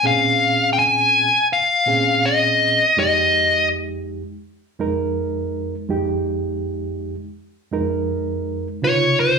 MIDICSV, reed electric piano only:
0, 0, Header, 1, 2, 480
1, 0, Start_track
1, 0, Key_signature, -4, "minor"
1, 0, Tempo, 731707
1, 30, Time_signature, 4, 2, 24, 8
1, 6158, End_track
2, 0, Start_track
2, 0, Title_t, "Reed electric piano"
2, 0, Program_c, 0, 4
2, 20, Note_on_c, 0, 46, 59
2, 24, Note_on_c, 0, 60, 58
2, 27, Note_on_c, 0, 61, 60
2, 33, Note_on_c, 0, 68, 65
2, 843, Note_off_c, 0, 46, 0
2, 845, Note_off_c, 0, 60, 0
2, 847, Note_off_c, 0, 61, 0
2, 850, Note_off_c, 0, 68, 0
2, 1221, Note_on_c, 0, 46, 66
2, 1226, Note_on_c, 0, 60, 56
2, 1231, Note_on_c, 0, 61, 59
2, 1232, Note_on_c, 0, 68, 74
2, 1844, Note_off_c, 0, 46, 0
2, 1846, Note_off_c, 0, 60, 0
2, 1849, Note_off_c, 0, 61, 0
2, 1849, Note_off_c, 0, 68, 0
2, 1946, Note_on_c, 0, 41, 62
2, 1949, Note_on_c, 0, 56, 61
2, 1953, Note_on_c, 0, 63, 60
2, 1956, Note_on_c, 0, 67, 69
2, 2766, Note_off_c, 0, 41, 0
2, 2768, Note_off_c, 0, 56, 0
2, 2769, Note_off_c, 0, 63, 0
2, 2771, Note_off_c, 0, 67, 0
2, 3141, Note_on_c, 0, 41, 69
2, 3146, Note_on_c, 0, 56, 70
2, 3148, Note_on_c, 0, 63, 71
2, 3155, Note_on_c, 0, 70, 82
2, 3763, Note_off_c, 0, 41, 0
2, 3766, Note_off_c, 0, 56, 0
2, 3767, Note_off_c, 0, 63, 0
2, 3770, Note_off_c, 0, 70, 0
2, 3863, Note_on_c, 0, 41, 69
2, 3864, Note_on_c, 0, 56, 64
2, 3869, Note_on_c, 0, 63, 63
2, 3873, Note_on_c, 0, 67, 77
2, 4684, Note_off_c, 0, 41, 0
2, 4684, Note_off_c, 0, 56, 0
2, 4687, Note_off_c, 0, 63, 0
2, 4689, Note_off_c, 0, 67, 0
2, 5063, Note_on_c, 0, 41, 77
2, 5067, Note_on_c, 0, 56, 67
2, 5070, Note_on_c, 0, 63, 72
2, 5074, Note_on_c, 0, 70, 75
2, 5684, Note_off_c, 0, 41, 0
2, 5686, Note_off_c, 0, 56, 0
2, 5687, Note_off_c, 0, 63, 0
2, 5689, Note_off_c, 0, 70, 0
2, 5786, Note_on_c, 0, 49, 60
2, 5791, Note_on_c, 0, 48, 55
2, 5795, Note_on_c, 0, 63, 54
2, 5801, Note_on_c, 0, 65, 68
2, 6158, Note_off_c, 0, 48, 0
2, 6158, Note_off_c, 0, 49, 0
2, 6158, Note_off_c, 0, 63, 0
2, 6158, Note_off_c, 0, 65, 0
2, 6158, End_track
0, 0, End_of_file